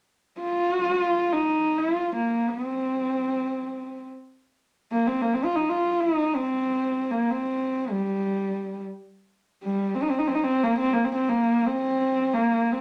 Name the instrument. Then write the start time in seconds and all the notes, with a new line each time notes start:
horsehead fiddle
0.41 F4
1.32 D#4
1.78 F4
2.16 A#3
2.49 C4
4.91 A#3
5.07 C4
5.22 A#3
5.34 C4
5.44 F4
5.55 D#4
5.70 F4
6.00 D#4
6.35 C4
7.11 A#3
7.30 C4
7.91 G3
9.64 G3
9.95 C4
10.03 D#4
10.10 C4
10.18 D#4
10.27 C4
10.35 D#4
10.44 C4
10.63 A#3
10.79 C4
10.93 A#3
11.04 C4
11.15 C4
11.29 A#3
11.67 C4
12.34 A#3
12.72 C4